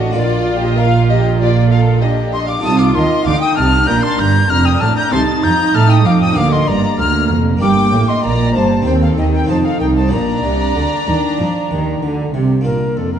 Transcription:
Already playing: A1 A2 D4 F#4 C5 D#5
0.11 D4 F4 A#4
0.15 A#1 A#2 F4 D5
0.61 G4 D#5
0.77 A#4 F5
1.09 G4 D#5
1.40 F4 D5
1.70 A4 F5
2.02 D4 G4 D#5
2.31 D#5 C6
2.48 F5 D6
2.59 D#4 F4 A4 A5
2.64 C2 C3 F4 D#6
2.78 F5 D6
2.94 D#2 D#3 D#5 C6
3.25 D2 D3 D#4 F5 D6
3.40 G5 D#6
3.56 C2 C3 A5 F6
3.84 D4 F4 A#4 A#5 G6
3.88 A#1 A#2 D4 G6
4.03 A5 C6 A6
4.19 G1 G2 A#5 G6
4.49 F1 F2 D4 A#5 F6
4.65 G5 D#6
4.81 A1 A2 A5 F6
4.96 A#5 G6
5.08 C4 D#4 A4
5.12 C2 C3 D#4 A5 C6 A6
5.43 F2 F3 A#5 G6
5.74 A2 A3 A5 F6
5.89 G5 D#6
6.05 F2 F3 F5 D6
6.21 G5 D#6
6.32 A#3 D4 F4 F5
6.36 D2 D3 A#3 D6
6.52 D#5 C6
6.68 G1 G2 D5 A#5
6.99 D2 A#3 A#5 F6
7.30 F1 F2
7.57 A#3 D4 G4
7.61 G1 G2 A#3 G5 D6
7.93 A1 A2
8.08 D#5 C6
8.23 A#1 A#2 A#3 D5 A#5
8.55 G1 G2 C5 A5
8.82 C4 D#4 G4
8.86 D#2 C4 C5 G5
9.02 A4 F5
9.17 D#2 D#3 G4 D#5
9.33 A#4 G5
9.45 F1 C4 D#4 F4 A5
9.49 F2 C5 A5
9.65 A4 F5
9.80 C2 A#4 G5
9.96 C5 A5
10.07 A#3 D4 F4 A#5
10.12 A#1 A#2 D4 D5 A#5
10.43 C2 C3
10.75 D2 D3
11.07 D#2 D#3
11.39 F2 F3
11.71 D#2 D#3
12.02 D2 D3
12.34 C2 C3
12.61 A#3 D4 F4
12.65 A#2 A#3 F4 A#4
12.97 F2 F4 A4
13.12 G4 A#4

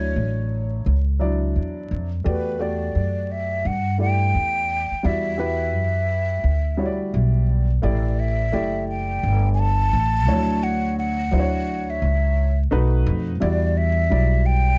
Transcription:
Already playing: D2 F#3 D4 E4 C#5
0.16 A1
0.86 C#2
1.20 F#3 D4 E4 D5
1.56 E2
1.91 F2
2.24 E2 A3 F#4 G4 B4 D5
2.59 A3 F#4 G4 D5
2.95 F#2
3.32 E5
3.65 G2 F#5
3.98 A3 E4 G4 D5 G5
4.35 E2
4.91 muted upright bass stroke
5.03 E2 G3 E4 F#4 D5 E5
5.38 E4 F#4 G4 B4
5.74 F#2
6.44 D2
6.77 G3 E4 F#4 C#5
6.86 D5
7.14 B1
7.82 A1 A3 E4 G4 D5
8.19 E5
8.52 F#1 A3 E4 G4 D5
8.89 G5
9.23 G1
9.54 G#5
9.59 A5
9.93 A1
10.27 D2 F3 D4 E4 C#5
10.33 F#3
10.63 F#5
10.99 F#5
11.31 D2 F#3 D4 E4 C5
11.39 C#5
11.90 E5
12.02 C#2
12.71 B1 A3 D#4 F#4 B4
13.06 F2
13.40 E2 G3 E4 F#4 D5
13.77 E5
14.10 B1 F#3 G3 E4 D5
14.46 G5

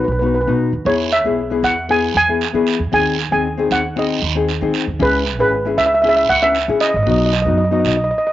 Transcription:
0.04 B1 B4
0.12 B4
0.19 B3 D#4 F#4 B4
0.27 B4
0.35 B4
0.41 B4
0.47 B2 B3 D#4 F#4
0.73 D#2
0.85 E2 B3 E4 G#4 C#5, long guiro
1.12 E5, short guiro
1.24 B1 B3 E4 G#4
1.50 B3 E4 G#4
1.63 E2 F#5, short guiro
1.89 B3 E4 G#4 G#5, long guiro
2.15 E2 G#5
2.28 B3 E4 G#4
2.41 short guiro
2.53 E3 B3 E4 G#4
2.67 short guiro
2.80 E2
2.92 D#2 C4 D#4 G#4 G#5, long guiro
3.19 short guiro
3.31 D#2 C4 D#4 G#4 G#5
3.57 C4 D#4 G#4
3.70 D#2 F#5, short guiro
3.96 C4 D#4 G#4 D#5, long guiro
4.22 D#2
4.35 C4 D#4 G#4
4.48 short guiro
4.61 D#3 C4 D#4 G#4
4.74 short guiro
4.87 D#2
4.99 C#2 C#4 E4 G#4 B4, long guiro
5.26 short guiro
5.39 G#1 C#4 E4 G#4 B4
5.65 C#4 E4 G#4
5.77 C#2 E5, short guiro
5.86 E5
5.94 E5
6.02 C#4 E4 G#4 E5, long guiro
6.09 E5
6.16 E5
6.29 C#2 F#5
6.42 C#4 E4 B4 E5
6.55 short guiro
6.68 C#3 C#4 E4 G#4
6.81 D#5, short guiro
6.89 D#5
6.94 G#1 D#5
7.03 B1 B3 D#4 D#5, long guiro
7.07 F#4 D#5
7.18 D#5
7.26 D#5
7.33 D#5, short guiro
7.42 F#2 B3 D#5
7.46 D#4 F#4 D#5
7.58 D#5
7.65 D#5
7.71 B3 D#4 F#4 D#5
7.80 D#5
7.84 B1 D#5, short guiro
7.97 D#5
8.04 D#5
8.11 D#5
8.18 D#5
8.27 D#5

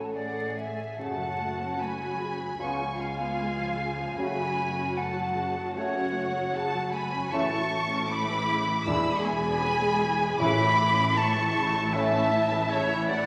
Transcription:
Already playing: A1 A2 A3 C#4 F#4 A4 C#5
0.04 A5
0.13 G#4 D5 F#5
0.57 E5 G#5
0.99 F#1 F#2 C#3 A3 C#4 F#4 F#5 A5
1.20 F#3
1.40 A3
1.61 C#4
1.80 A3 G#5 B5
2.01 F#3
2.21 C#3
2.41 F#3
2.59 C#2 C#3 B3 C#4 F4 G#5 C#6
2.81 F3
2.99 G#3 F5 G#5
3.19 B3
3.39 G#3
3.59 F3
3.79 C#3
3.98 F3
4.17 F#1 F#2 C#3 A3 C#4 F#4 G#5 B5
4.38 F#3
4.58 A3
4.78 C#4
4.97 A3 F#5 A5
5.18 F#3
5.38 C#3
5.57 F#3
5.76 C#3 A3 C#4 F#4 C#5 F#5
5.95 C#4
6.15 A3
6.34 F#3
6.54 C#3 F#5 A5
6.74 F#3
6.93 A3 G#5 B5
7.13 C#4
7.32 A1 A2 C#3 E3 A3 C#4 E4 A5 C#6
7.51 E3
7.71 A3
7.91 C#4
8.10 A3 E4 B5 D6
8.29 E3
8.48 C#3
8.67 E3
8.86 E1 E2 E3 G#3 D4 E4 G#4 B5 E6
9.07 G#3
9.24 B3 G#5 B5
9.45 D4
9.65 B3
9.84 G#3
10.04 E3
10.23 G#3
10.39 A1 A2 C#3 E3 A3 C#4 E4 B5 D6
10.62 E3
10.81 A3
10.99 C#4
11.16 A3 A5 C#6
11.36 E3
11.56 C#3
11.75 E3
11.93 E3 A3 C#4 E4 E5 A5
12.13 C#4
12.32 A3
12.52 E3
12.70 C#3 C#5 E5
12.91 E3
13.09 A3 D5 F#5

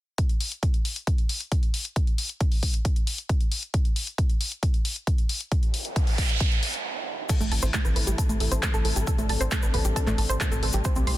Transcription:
0.18 kick, closed hi-hat
0.29 closed hi-hat
0.41 open hi-hat
0.52 closed hi-hat
0.63 kick, closed hi-hat
0.74 closed hi-hat
0.85 open hi-hat
0.96 closed hi-hat
1.07 kick, closed hi-hat
1.18 closed hi-hat
1.29 open hi-hat
1.41 closed hi-hat
1.52 kick, closed hi-hat
1.63 closed hi-hat
1.74 open hi-hat
1.85 closed hi-hat
1.96 kick, closed hi-hat
2.07 closed hi-hat
2.18 open hi-hat
2.29 closed hi-hat
2.40 kick, closed hi-hat
2.52 open hi-hat
2.63 kick, open hi-hat
2.74 closed hi-hat
2.85 kick, closed hi-hat
2.96 closed hi-hat
3.07 open hi-hat
3.18 closed hi-hat
3.29 kick, closed hi-hat
3.41 closed hi-hat
3.52 open hi-hat
3.63 closed hi-hat
3.74 kick, closed hi-hat
3.85 closed hi-hat
3.96 open hi-hat
4.07 closed hi-hat
4.18 kick, closed hi-hat
4.30 closed hi-hat
4.41 open hi-hat
4.52 closed hi-hat
4.63 kick, closed hi-hat
4.74 closed hi-hat
4.85 open hi-hat
4.96 closed hi-hat
5.07 kick, closed hi-hat
5.18 closed hi-hat
5.29 open hi-hat
5.41 closed hi-hat
5.52 kick, closed hi-hat, noise sweep
5.63 closed hi-hat
5.74 open hi-hat
5.85 closed hi-hat
5.96 kick, closed hi-hat
6.07 open hi-hat
6.18 kick, open hi-hat
6.29 closed hi-hat
6.40 kick, closed hi-hat
6.52 closed hi-hat
6.63 open hi-hat
6.74 closed hi-hat
7.29 C3 E3 A3 E4 A4, kick, closed hi-hat, crash, cabasa
7.40 A1 A3, closed hi-hat, cabasa
7.52 A1 A5, open hi-hat
7.62 A1 C5, closed hi-hat, cabasa
7.74 A3, kick, clap, closed hi-hat, cabasa
7.85 A1 B4, closed hi-hat, cabasa
7.96 A1 B4, open hi-hat
8.07 A1 G4, closed hi-hat, cabasa
8.18 A5, kick, closed hi-hat, cabasa
8.29 A1 A3, closed hi-hat, cabasa
8.40 A1 A4, open hi-hat
8.51 A1 C5, closed hi-hat, cabasa
8.63 A3, kick, clap, closed hi-hat, cabasa
8.74 A1 A4, closed hi-hat, cabasa
8.85 A1 A4, open hi-hat
8.96 A1 G4, closed hi-hat, cabasa
9.07 D4 A4, kick, closed hi-hat, cabasa
9.18 A1 A3, closed hi-hat, cabasa
9.29 A1 A5, open hi-hat
9.41 A1 C5, closed hi-hat, cabasa
9.51 A3, kick, clap, closed hi-hat, cabasa
9.62 A1 B4, closed hi-hat, cabasa
9.74 A1 B4, kick, open hi-hat
9.85 A1 G4, closed hi-hat, cabasa
9.96 A5, kick, closed hi-hat, cabasa
10.07 A1 A3, clap, closed hi-hat, cabasa
10.18 A1 A4, open hi-hat
10.29 A1 C5, closed hi-hat, cabasa
10.40 A3, kick, clap, closed hi-hat, cabasa
10.52 A1 A4, closed hi-hat, cabasa
10.63 A1 A4, open hi-hat
10.73 A1 G4, closed hi-hat, cabasa
10.84 G3 E4 G4 C5, kick, closed hi-hat, cabasa
10.95 C2 C4, closed hi-hat, cabasa
11.07 C2 C6, open hi-hat

